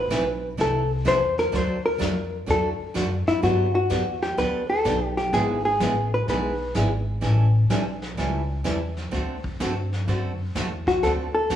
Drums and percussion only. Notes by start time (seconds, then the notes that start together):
0.11 kick, snare, hi-hat pedal
0.58 brush sweep, kick, snare
1.06 kick, snare, hi-hat pedal
1.38 snare
1.53 brush sweep, kick, snare
2.01 kick, snare, hi-hat pedal
2.48 brush sweep, kick, snare
2.96 kick, snare, hi-hat pedal
3.27 snare
3.43 brush sweep, kick, snare
3.90 kick, snare, hi-hat pedal
4.22 snare
4.38 brush sweep, kick, snare
4.85 kick, snare, hi-hat pedal
5.17 snare
5.33 brush sweep, kick, snare
5.80 kick, snare, hi-hat pedal
6.28 brush sweep, kick, snare
6.75 kick, snare, hi-hat pedal
7.22 brush sweep, kick, snare
7.70 kick, snare, hi-hat pedal
8.02 snare
8.18 brush sweep, kick, snare
8.65 kick, snare, hi-hat pedal
8.97 snare
9.13 brush sweep, kick, snare
9.44 kick
9.60 kick, snare, hi-hat pedal
9.92 snare
10.08 brush sweep, kick, snare
10.55 kick, snare, hi-hat pedal
10.87 kick, snare
11.03 brush sweep, kick, snare
11.50 kick, snare, hi-hat pedal